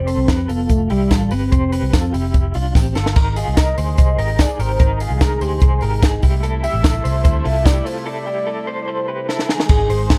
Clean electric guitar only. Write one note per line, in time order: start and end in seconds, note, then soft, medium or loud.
0.07 0.28 A4 medium
0.07 0.28 C5 medium
0.28 0.48 G4 medium
0.28 0.49 B4 medium
0.48 0.88 F4 medium
0.48 0.87 A4 medium
0.90 1.11 E4 medium
0.90 1.11 G4 medium
1.11 1.32 F4 medium
1.11 1.32 A4 medium
1.31 1.52 G4 medium
1.31 1.51 B4 medium
1.52 1.72 G4 medium
1.52 1.72 C5 medium
1.72 1.93 G4 medium
1.72 1.93 B4 medium
1.93 2.14 F4 medium
1.93 2.12 A4 medium
2.13 2.52 E4 soft
2.13 2.52 G4 medium
2.55 2.76 D4 medium
2.55 2.75 F4 medium
2.75 2.96 C4 medium
2.75 2.96 G4 medium
2.95 3.16 F4 medium
2.95 3.15 A4 medium
3.16 3.37 D#4 medium
3.16 3.36 A#4 medium
3.37 3.58 F4 medium
3.37 3.56 G#4 medium
3.57 3.78 D#4 medium
3.57 3.77 A#4 medium
3.78 3.98 G#4 medium
3.78 3.97 C5 medium
3.98 4.19 G#4 medium
3.98 4.18 C5 medium
4.18 4.38 G4 medium
4.18 4.39 A#4 medium
4.39 4.60 D#4 medium
4.39 4.59 G#4 medium
4.60 4.80 G4 medium
4.60 4.79 A#4 medium
4.80 5.01 D#4 medium
4.80 5.00 A#4 loud
5.01 5.21 F4 medium
5.01 5.21 G#4 medium
5.21 5.42 D#4 medium
5.21 5.41 A#4 medium
5.41 5.61 G#4 medium
5.41 5.61 C5 medium
5.62 5.83 G#4 medium
5.62 5.82 C5 medium
5.82 6.03 G4 medium
5.82 6.03 A#4 medium
6.03 6.24 D#4 medium
6.03 6.22 G#4 medium
6.23 6.43 E4 medium
6.23 6.43 G4 medium
6.43 6.63 E4 medium
6.43 6.63 A4 medium
6.63 6.83 E4 medium
6.63 6.83 G4 medium
6.83 7.04 E4 medium
6.83 7.04 A4 medium
7.04 7.23 A4 medium
7.04 7.23 C5 medium
7.24 7.43 A4 medium
7.24 7.45 C5 medium
7.44 7.66 F4 medium
7.44 7.64 A4 medium
7.65 7.86 E4 medium
7.65 7.85 G4 medium
7.85 8.06 F4 medium
7.85 8.04 A4 medium
8.05 8.26 E4 medium
8.05 8.26 A4 loud
8.26 8.46 E4 medium
8.26 8.46 G4 medium
8.47 8.67 E4 medium
8.47 8.67 A4 medium
8.67 8.87 A4 medium
8.67 8.86 C5 medium
8.88 9.08 A4 medium
8.88 9.08 C5 medium
9.08 9.28 G4 soft
9.08 9.29 B4 medium
9.29 9.49 E4 medium
9.29 9.48 A4 medium
9.49 9.69 D#4 medium
9.49 9.69 G#4 medium
9.70 9.90 D#4 medium
9.70 9.89 G#4 loud
9.90 10.18 G#4 medium
9.90 10.18 C5 medium